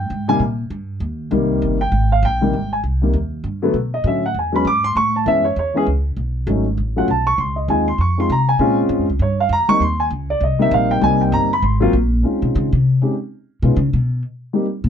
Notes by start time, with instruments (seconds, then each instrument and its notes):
Already playing: grand piano G5
0.10 upright bass G#2
0.28 grand piano C3 D#3 G3 A#3 G#5
0.39 upright bass A#2
0.70 upright bass G2
1.00 upright bass D#2
1.31 upright bass C2, grand piano C3 D#3 G3 A#3
1.62 upright bass G1
1.81 grand piano G5
1.92 upright bass G#1
2.12 grand piano F5
2.23 upright bass A#1, grand piano G5
2.41 grand piano C3 D#3 G3 A#3
2.53 upright bass G#1
2.73 grand piano G#5
2.84 upright bass C2
3.02 grand piano C3 D#3 G3 A#3
3.13 upright bass D#2
3.44 upright bass G2
3.62 grand piano D3 F#3 A3 B3
3.74 upright bass B2
3.94 grand piano D#5
4.04 upright bass A2, grand piano D3 F#3 A3 C#4 E5
4.26 grand piano F#5
4.34 upright bass E2
4.39 grand piano G#5
4.52 grand piano F#3 G#3 B3 C#4 B5
4.65 upright bass G#2, grand piano D6
4.84 grand piano C6
4.95 upright bass A2, grand piano C#6
5.16 grand piano A5
5.25 upright bass F#2, grand piano E3 G#3 B3 C#4 E5
5.44 grand piano C#5
5.56 upright bass E2, grand piano C#5
5.74 grand piano E3 G#3 B3 C#4 G#4
5.87 upright bass C#2
6.17 upright bass B1
6.47 upright bass G#1, grand piano F#3 A3 C#4 D#4
6.78 upright bass A1
6.96 grand piano F#3 A3 C#4 F4 F#5
7.08 upright bass B1, grand piano A5
7.27 grand piano C#6
7.38 upright bass C#2, grand piano C6
7.56 grand piano D#5
7.68 upright bass D#2, grand piano G#3 C4 D#4 F4 G#5
7.88 grand piano C6
7.98 upright bass F2, grand piano C#6
8.18 grand piano G#3 C4 D#4 F4 C6
8.30 upright bass C3, grand piano A#5
8.49 grand piano G#5
8.59 upright bass A#2, grand piano G#3 C4 C#4 F4
8.89 upright bass G#2
8.99 upright bass F2
9.09 upright bass C#2
9.19 upright bass G2, grand piano C#5
9.40 grand piano F5
9.49 upright bass F2, grand piano A#5
9.68 grand piano G3 A#3 C4 D#4 C#6, muted upright bass stroke
9.80 upright bass D#2, grand piano C6
10.00 grand piano G#5
10.11 upright bass C#2
10.30 grand piano D5
10.40 upright bass C2, grand piano D#5
10.59 grand piano G3 A#3 C4 D#4 E5
10.71 upright bass A#1, grand piano F5
10.91 grand piano G5
11.01 upright bass C2, grand piano G3 A#3 C4 D#4 G#5
11.21 grand piano G5
11.32 upright bass G1, grand piano A#5
11.53 grand piano B5
11.62 upright bass G#1, grand piano C6
11.80 grand piano F#3 A#3 C4 F4
11.93 upright bass A#1
12.23 grand piano G#3 C4 C#4 D#4 F4
12.42 upright bass B2
12.55 upright bass C#3
12.73 upright bass C3
13.01 grand piano G#3 C4 C#4 D#4 G4
13.62 upright bass B2, grand piano G#3 B3 C#4 D#4 F4
13.77 upright bass C#3
13.93 upright bass B2
14.53 grand piano G3 A#3 C4 D#4 G4
14.84 upright bass A#2